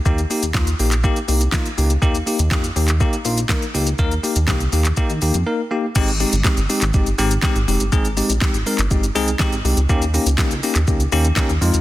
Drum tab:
CC |----------------|----------------|----------------|x---------------|
HH |-xox-xox-xox-xox|-xox-xox-xox-xox|-xox-xox-xox----|-xox-xox-xox-xox|
SH |xxxxxxxxxxxxxxxx|xxxxxxxxxxxxxxxx|xxxxxxxxxxxx----|xxxxxxxxxxxxxxxx|
CP |----x--x----x---|----x--x----x---|----x--x--------|----x--x----x---|
SD |----o-------o---|----o-------o---|----o-----------|----o-------o---|
BD |o---o---o---o---|o---o---o---o---|o---o---o-------|o---o---o---o---|

CC |----------------|----------------|
HH |-xox-xox-xox-xox|-xox-xox-xox-xox|
SH |xxxxxxxxxxxxxxxx|xxxxxxxxxxxxxxxx|
CP |----x--x----x---|----x--x----x---|
SD |----o-------o---|----o-------o---|
BD |o---o---o---o---|o---o---o---o---|